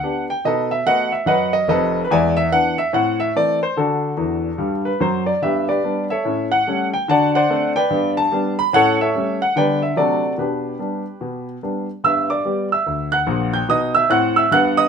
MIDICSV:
0, 0, Header, 1, 2, 480
1, 0, Start_track
1, 0, Key_signature, 1, "major"
1, 0, Tempo, 413508
1, 522, Time_signature, 4, 2, 24, 8
1, 17279, End_track
2, 0, Start_track
2, 0, Title_t, "Grand piano"
2, 0, Program_c, 0, 0
2, 0, Note_on_c, 0, 78, 71
2, 37, Note_on_c, 0, 59, 39
2, 41, Note_on_c, 0, 62, 39
2, 46, Note_on_c, 0, 67, 44
2, 269, Note_off_c, 0, 78, 0
2, 303, Note_off_c, 0, 59, 0
2, 306, Note_off_c, 0, 62, 0
2, 309, Note_off_c, 0, 67, 0
2, 350, Note_on_c, 0, 79, 73
2, 500, Note_off_c, 0, 79, 0
2, 520, Note_on_c, 0, 47, 60
2, 526, Note_on_c, 0, 75, 79
2, 542, Note_on_c, 0, 63, 37
2, 543, Note_on_c, 0, 71, 53
2, 547, Note_on_c, 0, 69, 59
2, 779, Note_off_c, 0, 75, 0
2, 801, Note_off_c, 0, 63, 0
2, 811, Note_off_c, 0, 71, 0
2, 814, Note_off_c, 0, 69, 0
2, 826, Note_on_c, 0, 76, 79
2, 929, Note_off_c, 0, 47, 0
2, 978, Note_off_c, 0, 76, 0
2, 997, Note_on_c, 0, 57, 42
2, 997, Note_on_c, 0, 59, 37
2, 1004, Note_on_c, 0, 66, 44
2, 1005, Note_on_c, 0, 78, 95
2, 1017, Note_on_c, 0, 75, 65
2, 1018, Note_on_c, 0, 71, 61
2, 1259, Note_off_c, 0, 78, 0
2, 1263, Note_off_c, 0, 57, 0
2, 1263, Note_off_c, 0, 59, 0
2, 1268, Note_off_c, 0, 66, 0
2, 1289, Note_off_c, 0, 71, 0
2, 1289, Note_off_c, 0, 75, 0
2, 1302, Note_on_c, 0, 76, 70
2, 1456, Note_off_c, 0, 76, 0
2, 1462, Note_on_c, 0, 42, 58
2, 1475, Note_on_c, 0, 78, 82
2, 1486, Note_on_c, 0, 71, 70
2, 1489, Note_on_c, 0, 75, 68
2, 1733, Note_off_c, 0, 78, 0
2, 1760, Note_off_c, 0, 75, 0
2, 1763, Note_off_c, 0, 71, 0
2, 1778, Note_on_c, 0, 75, 88
2, 1879, Note_off_c, 0, 42, 0
2, 1934, Note_off_c, 0, 75, 0
2, 1950, Note_on_c, 0, 29, 67
2, 1952, Note_on_c, 0, 41, 68
2, 1965, Note_on_c, 0, 75, 87
2, 1972, Note_on_c, 0, 71, 65
2, 1978, Note_on_c, 0, 69, 70
2, 2296, Note_off_c, 0, 75, 0
2, 2331, Note_off_c, 0, 71, 0
2, 2334, Note_off_c, 0, 69, 0
2, 2340, Note_off_c, 0, 29, 0
2, 2342, Note_off_c, 0, 41, 0
2, 2374, Note_on_c, 0, 71, 63
2, 2445, Note_on_c, 0, 40, 77
2, 2455, Note_off_c, 0, 71, 0
2, 2456, Note_on_c, 0, 80, 91
2, 2465, Note_on_c, 0, 56, 52
2, 2468, Note_on_c, 0, 76, 65
2, 2473, Note_on_c, 0, 74, 70
2, 2705, Note_off_c, 0, 80, 0
2, 2724, Note_off_c, 0, 56, 0
2, 2729, Note_off_c, 0, 76, 0
2, 2738, Note_off_c, 0, 74, 0
2, 2746, Note_on_c, 0, 76, 91
2, 2853, Note_off_c, 0, 40, 0
2, 2899, Note_off_c, 0, 76, 0
2, 2926, Note_on_c, 0, 59, 39
2, 2928, Note_on_c, 0, 52, 44
2, 2931, Note_on_c, 0, 78, 96
2, 2935, Note_on_c, 0, 62, 52
2, 3183, Note_off_c, 0, 78, 0
2, 3190, Note_off_c, 0, 59, 0
2, 3191, Note_off_c, 0, 52, 0
2, 3196, Note_off_c, 0, 62, 0
2, 3229, Note_on_c, 0, 76, 82
2, 3381, Note_off_c, 0, 76, 0
2, 3402, Note_on_c, 0, 45, 72
2, 3416, Note_on_c, 0, 78, 79
2, 3431, Note_on_c, 0, 60, 43
2, 3666, Note_off_c, 0, 78, 0
2, 3688, Note_off_c, 0, 60, 0
2, 3712, Note_on_c, 0, 76, 80
2, 3812, Note_off_c, 0, 45, 0
2, 3863, Note_off_c, 0, 76, 0
2, 3896, Note_on_c, 0, 52, 44
2, 3900, Note_on_c, 0, 57, 44
2, 3905, Note_on_c, 0, 60, 39
2, 3907, Note_on_c, 0, 74, 85
2, 4152, Note_off_c, 0, 74, 0
2, 4158, Note_off_c, 0, 52, 0
2, 4161, Note_off_c, 0, 57, 0
2, 4164, Note_off_c, 0, 60, 0
2, 4211, Note_on_c, 0, 72, 74
2, 4355, Note_off_c, 0, 72, 0
2, 4374, Note_on_c, 0, 50, 59
2, 4381, Note_on_c, 0, 69, 69
2, 4394, Note_on_c, 0, 66, 51
2, 4396, Note_on_c, 0, 62, 48
2, 4779, Note_off_c, 0, 50, 0
2, 4842, Note_on_c, 0, 40, 56
2, 4848, Note_on_c, 0, 52, 54
2, 5204, Note_off_c, 0, 40, 0
2, 5208, Note_off_c, 0, 52, 0
2, 5317, Note_on_c, 0, 55, 53
2, 5321, Note_on_c, 0, 43, 54
2, 5446, Note_off_c, 0, 69, 0
2, 5593, Note_off_c, 0, 66, 0
2, 5595, Note_off_c, 0, 62, 0
2, 5632, Note_on_c, 0, 71, 62
2, 5681, Note_off_c, 0, 55, 0
2, 5683, Note_off_c, 0, 43, 0
2, 5784, Note_off_c, 0, 71, 0
2, 5805, Note_on_c, 0, 54, 57
2, 5807, Note_on_c, 0, 42, 54
2, 5818, Note_on_c, 0, 72, 71
2, 6068, Note_off_c, 0, 72, 0
2, 6110, Note_on_c, 0, 74, 62
2, 6166, Note_off_c, 0, 54, 0
2, 6168, Note_off_c, 0, 42, 0
2, 6263, Note_off_c, 0, 74, 0
2, 6294, Note_on_c, 0, 43, 60
2, 6299, Note_on_c, 0, 76, 77
2, 6313, Note_on_c, 0, 59, 37
2, 6315, Note_on_c, 0, 67, 55
2, 6316, Note_on_c, 0, 71, 57
2, 6548, Note_off_c, 0, 76, 0
2, 6570, Note_off_c, 0, 59, 0
2, 6580, Note_off_c, 0, 67, 0
2, 6580, Note_off_c, 0, 71, 0
2, 6601, Note_on_c, 0, 74, 66
2, 6614, Note_on_c, 0, 67, 48
2, 6614, Note_on_c, 0, 71, 43
2, 6699, Note_off_c, 0, 43, 0
2, 6779, Note_on_c, 0, 55, 38
2, 6784, Note_on_c, 0, 62, 41
2, 6785, Note_on_c, 0, 59, 40
2, 7003, Note_off_c, 0, 74, 0
2, 7040, Note_off_c, 0, 55, 0
2, 7044, Note_off_c, 0, 59, 0
2, 7044, Note_off_c, 0, 62, 0
2, 7047, Note_off_c, 0, 71, 0
2, 7048, Note_off_c, 0, 67, 0
2, 7084, Note_on_c, 0, 76, 69
2, 7095, Note_on_c, 0, 73, 54
2, 7098, Note_on_c, 0, 69, 47
2, 7254, Note_on_c, 0, 45, 58
2, 7277, Note_on_c, 0, 61, 44
2, 7484, Note_off_c, 0, 76, 0
2, 7528, Note_off_c, 0, 73, 0
2, 7530, Note_off_c, 0, 69, 0
2, 7533, Note_off_c, 0, 61, 0
2, 7563, Note_on_c, 0, 78, 90
2, 7659, Note_off_c, 0, 45, 0
2, 7746, Note_on_c, 0, 55, 43
2, 7752, Note_on_c, 0, 57, 41
2, 7761, Note_on_c, 0, 61, 50
2, 7964, Note_off_c, 0, 78, 0
2, 8005, Note_off_c, 0, 55, 0
2, 8009, Note_off_c, 0, 57, 0
2, 8016, Note_off_c, 0, 61, 0
2, 8050, Note_on_c, 0, 79, 78
2, 8194, Note_off_c, 0, 79, 0
2, 8221, Note_on_c, 0, 50, 76
2, 8236, Note_on_c, 0, 81, 86
2, 8248, Note_on_c, 0, 66, 42
2, 8249, Note_on_c, 0, 78, 68
2, 8250, Note_on_c, 0, 74, 67
2, 8477, Note_off_c, 0, 81, 0
2, 8501, Note_off_c, 0, 66, 0
2, 8508, Note_off_c, 0, 74, 0
2, 8508, Note_off_c, 0, 78, 0
2, 8534, Note_on_c, 0, 78, 82
2, 8544, Note_on_c, 0, 72, 67
2, 8547, Note_on_c, 0, 74, 66
2, 8623, Note_off_c, 0, 50, 0
2, 8708, Note_on_c, 0, 57, 50
2, 8714, Note_on_c, 0, 60, 45
2, 8715, Note_on_c, 0, 62, 49
2, 8930, Note_off_c, 0, 78, 0
2, 8966, Note_off_c, 0, 57, 0
2, 8971, Note_off_c, 0, 60, 0
2, 8971, Note_off_c, 0, 62, 0
2, 8973, Note_off_c, 0, 72, 0
2, 8974, Note_off_c, 0, 74, 0
2, 9006, Note_on_c, 0, 79, 87
2, 9015, Note_on_c, 0, 74, 62
2, 9019, Note_on_c, 0, 71, 65
2, 9175, Note_on_c, 0, 43, 73
2, 9197, Note_on_c, 0, 59, 44
2, 9405, Note_off_c, 0, 79, 0
2, 9448, Note_off_c, 0, 74, 0
2, 9450, Note_off_c, 0, 71, 0
2, 9452, Note_off_c, 0, 59, 0
2, 9487, Note_on_c, 0, 81, 92
2, 9579, Note_off_c, 0, 43, 0
2, 9656, Note_on_c, 0, 55, 53
2, 9664, Note_on_c, 0, 62, 56
2, 9665, Note_on_c, 0, 59, 49
2, 9885, Note_off_c, 0, 81, 0
2, 9917, Note_off_c, 0, 55, 0
2, 9923, Note_off_c, 0, 62, 0
2, 9924, Note_off_c, 0, 59, 0
2, 9968, Note_on_c, 0, 83, 91
2, 10113, Note_off_c, 0, 83, 0
2, 10135, Note_on_c, 0, 45, 66
2, 10149, Note_on_c, 0, 78, 99
2, 10160, Note_on_c, 0, 61, 43
2, 10160, Note_on_c, 0, 73, 78
2, 10165, Note_on_c, 0, 69, 74
2, 10393, Note_off_c, 0, 78, 0
2, 10415, Note_off_c, 0, 61, 0
2, 10422, Note_off_c, 0, 73, 0
2, 10425, Note_off_c, 0, 69, 0
2, 10458, Note_on_c, 0, 76, 80
2, 10469, Note_on_c, 0, 73, 59
2, 10470, Note_on_c, 0, 69, 56
2, 10539, Note_off_c, 0, 45, 0
2, 10622, Note_on_c, 0, 55, 42
2, 10633, Note_on_c, 0, 57, 44
2, 10639, Note_on_c, 0, 61, 52
2, 10852, Note_off_c, 0, 76, 0
2, 10882, Note_off_c, 0, 55, 0
2, 10889, Note_off_c, 0, 57, 0
2, 10894, Note_off_c, 0, 61, 0
2, 10895, Note_off_c, 0, 69, 0
2, 10895, Note_off_c, 0, 73, 0
2, 10934, Note_on_c, 0, 78, 79
2, 11075, Note_off_c, 0, 78, 0
2, 11095, Note_on_c, 0, 50, 68
2, 11099, Note_on_c, 0, 55, 40
2, 11104, Note_on_c, 0, 59, 37
2, 11106, Note_on_c, 0, 79, 79
2, 11113, Note_on_c, 0, 62, 35
2, 11118, Note_on_c, 0, 74, 59
2, 11125, Note_on_c, 0, 71, 68
2, 11351, Note_off_c, 0, 79, 0
2, 11359, Note_off_c, 0, 55, 0
2, 11363, Note_off_c, 0, 59, 0
2, 11369, Note_off_c, 0, 62, 0
2, 11381, Note_off_c, 0, 74, 0
2, 11384, Note_off_c, 0, 71, 0
2, 11403, Note_on_c, 0, 76, 70
2, 11499, Note_off_c, 0, 50, 0
2, 11549, Note_off_c, 0, 76, 0
2, 11567, Note_on_c, 0, 54, 40
2, 11570, Note_on_c, 0, 48, 65
2, 11575, Note_on_c, 0, 57, 35
2, 11577, Note_on_c, 0, 74, 71
2, 11584, Note_on_c, 0, 62, 35
2, 11589, Note_on_c, 0, 66, 47
2, 11597, Note_on_c, 0, 69, 48
2, 11831, Note_off_c, 0, 54, 0
2, 11836, Note_off_c, 0, 57, 0
2, 11843, Note_off_c, 0, 62, 0
2, 11976, Note_off_c, 0, 48, 0
2, 11980, Note_off_c, 0, 74, 0
2, 12024, Note_off_c, 0, 66, 0
2, 12029, Note_off_c, 0, 69, 0
2, 12047, Note_on_c, 0, 47, 48
2, 12060, Note_on_c, 0, 71, 52
2, 12072, Note_on_c, 0, 67, 43
2, 12074, Note_on_c, 0, 62, 44
2, 12454, Note_off_c, 0, 47, 0
2, 12521, Note_off_c, 0, 62, 0
2, 12527, Note_on_c, 0, 55, 35
2, 12529, Note_on_c, 0, 59, 31
2, 12538, Note_on_c, 0, 62, 37
2, 12790, Note_off_c, 0, 55, 0
2, 12792, Note_off_c, 0, 59, 0
2, 12799, Note_off_c, 0, 62, 0
2, 13011, Note_on_c, 0, 47, 49
2, 13277, Note_off_c, 0, 71, 0
2, 13416, Note_off_c, 0, 47, 0
2, 13452, Note_off_c, 0, 67, 0
2, 13499, Note_on_c, 0, 55, 35
2, 13501, Note_on_c, 0, 59, 36
2, 13503, Note_on_c, 0, 62, 35
2, 13759, Note_off_c, 0, 55, 0
2, 13760, Note_off_c, 0, 59, 0
2, 13762, Note_off_c, 0, 62, 0
2, 13974, Note_on_c, 0, 43, 58
2, 13982, Note_on_c, 0, 88, 77
2, 13995, Note_on_c, 0, 59, 34
2, 13997, Note_on_c, 0, 76, 63
2, 14228, Note_off_c, 0, 88, 0
2, 14251, Note_off_c, 0, 59, 0
2, 14259, Note_off_c, 0, 76, 0
2, 14278, Note_on_c, 0, 86, 67
2, 14285, Note_on_c, 0, 74, 47
2, 14378, Note_off_c, 0, 43, 0
2, 14450, Note_on_c, 0, 55, 36
2, 14455, Note_on_c, 0, 59, 38
2, 14458, Note_on_c, 0, 67, 39
2, 14679, Note_off_c, 0, 86, 0
2, 14713, Note_off_c, 0, 55, 0
2, 14716, Note_off_c, 0, 59, 0
2, 14719, Note_off_c, 0, 67, 0
2, 14721, Note_off_c, 0, 74, 0
2, 14768, Note_on_c, 0, 88, 60
2, 14777, Note_on_c, 0, 76, 52
2, 14934, Note_on_c, 0, 38, 48
2, 15165, Note_off_c, 0, 88, 0
2, 15208, Note_off_c, 0, 76, 0
2, 15229, Note_on_c, 0, 90, 82
2, 15247, Note_on_c, 0, 78, 59
2, 15338, Note_off_c, 0, 38, 0
2, 15400, Note_on_c, 0, 34, 68
2, 15406, Note_on_c, 0, 46, 72
2, 15634, Note_off_c, 0, 90, 0
2, 15682, Note_off_c, 0, 78, 0
2, 15712, Note_on_c, 0, 91, 75
2, 15726, Note_on_c, 0, 79, 57
2, 15786, Note_off_c, 0, 34, 0
2, 15789, Note_off_c, 0, 46, 0
2, 15862, Note_off_c, 0, 91, 0
2, 15884, Note_off_c, 0, 79, 0
2, 15888, Note_on_c, 0, 47, 68
2, 15899, Note_on_c, 0, 87, 85
2, 15907, Note_on_c, 0, 63, 59
2, 15912, Note_on_c, 0, 75, 70
2, 16147, Note_off_c, 0, 87, 0
2, 16177, Note_off_c, 0, 75, 0
2, 16188, Note_on_c, 0, 88, 77
2, 16204, Note_on_c, 0, 76, 73
2, 16270, Note_off_c, 0, 47, 0
2, 16282, Note_off_c, 0, 63, 0
2, 16340, Note_off_c, 0, 88, 0
2, 16363, Note_off_c, 0, 76, 0
2, 16363, Note_on_c, 0, 45, 74
2, 16374, Note_on_c, 0, 90, 85
2, 16385, Note_on_c, 0, 60, 70
2, 16388, Note_on_c, 0, 78, 75
2, 16624, Note_off_c, 0, 90, 0
2, 16655, Note_off_c, 0, 78, 0
2, 16672, Note_on_c, 0, 88, 72
2, 16689, Note_on_c, 0, 76, 65
2, 16747, Note_off_c, 0, 45, 0
2, 16761, Note_off_c, 0, 60, 0
2, 16823, Note_off_c, 0, 88, 0
2, 16846, Note_off_c, 0, 76, 0
2, 16847, Note_on_c, 0, 43, 74
2, 16859, Note_on_c, 0, 90, 98
2, 16871, Note_on_c, 0, 59, 69
2, 16875, Note_on_c, 0, 78, 77
2, 17107, Note_off_c, 0, 90, 0
2, 17139, Note_off_c, 0, 78, 0
2, 17150, Note_on_c, 0, 87, 96
2, 17157, Note_on_c, 0, 75, 70
2, 17230, Note_off_c, 0, 43, 0
2, 17245, Note_off_c, 0, 59, 0
2, 17279, Note_off_c, 0, 75, 0
2, 17279, Note_off_c, 0, 87, 0
2, 17279, End_track
0, 0, End_of_file